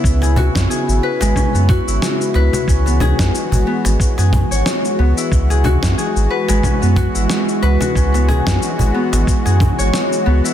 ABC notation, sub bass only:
X:1
M:4/4
L:1/16
Q:"Swing 16ths" 1/4=91
K:C#m
V:1 name="Sub bass" clef=bass
C,,3 F,, z G,,, z G,,, z F,,2 G,,, z2 C,, z | C,,3 F,, z G,,, z G,,, z F,,2 G,,, z2 C,, z | C,,3 F,, z G,,, z G,,, z F,,2 G,,, z2 C,, z | C,,3 F,, z G,,, z G,,, z F,,2 G,,, z2 C,, z |]